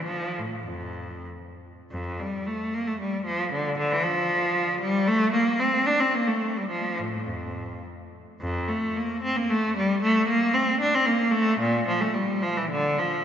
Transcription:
\new Staff \with { instrumentName = "Cello" } { \clef bass \time 3/4 \key f \major \tempo 4 = 111 f8 a,8 f,4 r4 | f,8 g8 a8 bes16 a16 g8 f8 | d8 d16 e16 f4. g8 | a8 bes8 c'8 d'16 c'16 bes16 a8 g16 |
f8 a,8 f,4 r4 | f,8 a8 bes8 c'16 bes16 a8 g8 | a8 bes8 c'8 d'16 c'16 bes8 a8 | bes,8 f16 a16 g8 f16 e16 d8 f8 | }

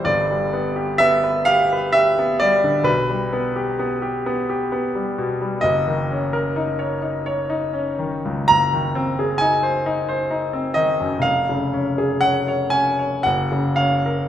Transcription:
\new Staff \with { instrumentName = "Grand piano" } { \time 3/4 \key g \mixolydian \tempo 4 = 64 << { d''4 e''8 f''8 e''8 d''8 | b'2 r4 | \key des \major ees''2. | bes''4 aes''4. ees''8 |
f''4 ges''8 aes''8 ges''8 f''8 | } \\ { <g,, g,>16 g16 b16 g'16 b16 b'16 g'16 b'16 g'16 b16 g16 d16 | b,,16 g16 b16 g'16 b16 g'16 b16 g'16 b16 g16 b,16 g16 | ges,,16 ees16 des'16 bes'16 ees'16 des''16 ees'16 des''16 ees'16 des'16 ees16 des,16 | ges,,16 ees16 c'16 aes'16 ees'16 c''16 ees'16 c''16 ees'16 c'16 ees16 ges,16 |
f,,16 des16 des'16 aes'16 des'16 des''16 des'16 des''16 ges,,16 des16 des'16 bes'16 | } >> }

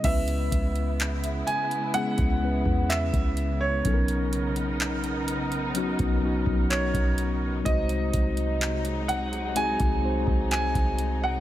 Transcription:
<<
  \new Staff \with { instrumentName = "Grand piano" } { \time 4/4 \key cis \dorian \tempo 4 = 63 e''4. gis''8 fis''4 e''8. cis''16~ | cis''8. r2 r16 cis''4 | dis''4. fis''8 gis''4 gis''8. fis''16 | }
  \new Staff \with { instrumentName = "Tine electric piano" } { \time 4/4 \key cis \dorian <gis b cis' e' b'>4. r8 <gis b cis' e' gis'>8 <gis b cis' e' b'>4 r8 | <fis b cis' dis' a' ais'>4. r8 <fis b cis' dis' fis'>8 <fis b cis' dis' fis'>4 r8 | <gis bis dis' fis' bis'>4. r8 <gis bis dis' fis' gis'>8 <gis bis dis' fis' bis'>4 r8 | }
  \new Staff \with { instrumentName = "String section" } { \time 4/4 \key cis \dorian << { <gis b e'>1 | <b dis' ais'>1 | <fis gis dis'>1 | } \\ { cis1~ | cis1 | bis,1 | } >> }
  \new Staff \with { instrumentName = "808-style bass" } { \clef bass \time 4/4 \key cis \dorian cis,8 cis,4 r8. cis,8 e,8 cis,8. | b,,2~ b,,16 b,,8 b,,8 b,,8. | bis,,8 bis,,4.~ bis,,16 bis,,8 bis,,8 bis,,8. | }
  \new DrumStaff \with { instrumentName = "Drums" } \drummode { \time 4/4 <cymc hh bd>16 hh16 <hh bd>16 hh16 <hc hh>16 hh16 hh16 hh16 hh16 <hh bd>8 bd16 <hc hh>16 <hh bd>16 hh8 | <hh bd>16 hh16 hh16 hh16 <hc hh>16 hh16 hh16 hh16 hh16 <hh bd>8 bd16 <hc hh>16 <hh bd>16 hh8 | <hh bd>16 hh16 <hh bd>16 hh16 <hc hh>16 hh16 hh16 hh16 hh16 <hh bd>8 bd16 <hc hh>16 <hh bd>16 hh8 | }
>>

